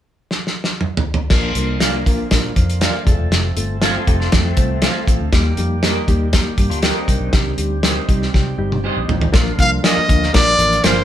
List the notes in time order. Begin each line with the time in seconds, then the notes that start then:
0.31 snare
0.47 snare
0.64 snare
0.81 mid tom
0.97 floor tom
1.14 floor tom
1.30 A#1 D3 F3 A#3 D4 F4 A#4, kick, snare, crash
1.55 C2 A#3 D4 F4 A#4, closed hi-hat
1.80 A#3 D4 F4 A#4 D5 F5, snare, closed hi-hat
2.06 A#1 A#3 D4 F4 A#4, kick, closed hi-hat
2.31 A#2 A#3 D4 F4 A#4, kick, snare, closed hi-hat
2.56 F2 C5, kick, closed hi-hat
2.70 closed hi-hat
2.81 F4 A#4 D5 F5, snare, closed hi-hat
3.05 F1 A3 C4 F4 G#4 A4, kick, closed hi-hat
3.12 A4
3.19 E1
3.31 F1, snare, closed hi-hat
3.57 G1 A3 C4 F4 A4, closed hi-hat
3.82 A3 C4 F4 A4 C5 F5, snare, closed hi-hat
3.96 D4 F4
4.07 F1 A3 C4 D#4 F4 G4 A4, kick, closed hi-hat
4.20 D4 F4, snare
4.32 F2 A3 C4 D4 F4 A4, kick, snare, closed hi-hat
4.45 A3 C4
4.57 C2 A3 C4 F4 C5, kick, closed hi-hat
4.82 A3 C4 F4 A4 C5 F5, snare, closed hi-hat
5.07 A1 A3 C4 F4 A4, kick, closed hi-hat
5.20 D2
5.33 D#2 G3 A#3 D#4 G4, kick, snare, closed hi-hat
5.57 F2 G3 A#3 D#4 G4, closed hi-hat
5.83 G3 A#3 D#4 G4 A#4 D#5, snare, closed hi-hat
6.08 D#2 G3 A#3 D#4 G4, kick, closed hi-hat
6.33 G3 A#3 D#4 G4, kick, snare, closed hi-hat
6.58 G2 A#3 G4, kick, closed hi-hat
6.70 D2 D4 F4, closed hi-hat
6.82 C4 D#4 G4 A4 A#4 D#5, snare, closed hi-hat
6.95 C4 D#4
7.08 C2 D4 A#4, kick, closed hi-hat
7.20 B1
7.32 C2 G3 C4 D#4 G4, kick, snare, closed hi-hat
7.58 D2 G3 C4 D#4 G4, closed hi-hat
7.83 G3 C4 D#4 G4 A#4 C5 D#5, snare, closed hi-hat
8.09 C2 G3 C4 D#4 G4, kick, closed hi-hat
8.22 snare
8.34 C3 G3 C4 D#4 G4, kick, snare
8.58 G1 G3 C4 D#4 G4
8.72 high tom
8.83 G3 C4 D#4 G4 C5 D#5
8.97 A#1
9.07 A1 G3 C4 D#4 F4, floor tom
9.21 floor tom
9.32 A#1 D3 F3 A#3 D4 F4 A#4, kick, snare, closed hi-hat
9.58 C2 F3 A#3 D4 F4 A#4 F5, kick, closed hi-hat
9.83 F3 A#3 D4 F4 A#4 D5 D#5 F5, snare, closed hi-hat
9.97 muted fingered electric bass stroke
10.08 D2 F3 A#3 D4 F4 A#4, kick, closed hi-hat
10.23 snare
10.33 A#1 F3 A#3 D4 F4 A#4 D5, kick, snare, closed hi-hat
10.58 A1 F3 A#3 D4 F4 A#4, closed hi-hat
10.73 closed hi-hat
10.83 G1 F3 A#3 D4 F4 A#4 C5 D5 F5, snare, closed hi-hat